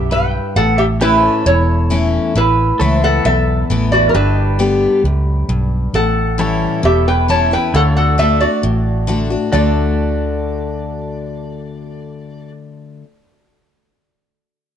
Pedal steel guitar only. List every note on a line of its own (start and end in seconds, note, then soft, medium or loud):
0.00 0.55 G4 medium
0.00 0.55 B4 medium
0.00 0.56 E5 medium
1.01 1.26 G4 medium
1.01 1.27 B4 medium
1.01 2.35 E5 medium
1.26 2.34 A4 medium
1.26 2.35 C#5 medium
2.79 4.13 A4 medium
2.79 3.06 C#5 medium
2.79 4.14 E5 medium
3.06 4.14 B4 medium
4.15 5.93 G4 medium
4.15 5.93 B4 medium
4.15 4.42 E5 medium
4.42 5.94 D5 medium
6.39 7.72 E4 medium
6.39 7.73 A4 medium
6.39 7.73 C#5 medium
7.74 7.99 E4 medium
7.74 9.52 A4 medium
7.74 7.96 C#5 medium
7.96 9.51 F#4 medium
7.96 9.53 D5 medium
9.52 12.51 F#4 medium
9.52 12.52 A4 medium
9.52 12.53 D5 medium